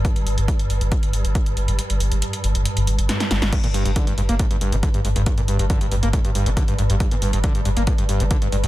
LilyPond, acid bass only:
\new Staff \with { instrumentName = "Acid bass" } { \clef bass \time 4/4 \key d \phrygian \tempo 4 = 138 r1 | r1 | g,16 bes,16 g,16 g,16 d16 g,16 g,16 bes16 a,16 g,16 g,16 d16 d16 g,16 g,16 g,16 | g,16 bes,16 g,16 g,16 d16 g,16 g,16 bes16 a,16 g,16 g,16 d16 d16 g,16 g,16 g,16 |
g,16 bes,16 g,16 g,16 d16 g,16 g,16 bes16 a,16 g,16 g,16 d16 d16 g,16 g,16 g,16 | }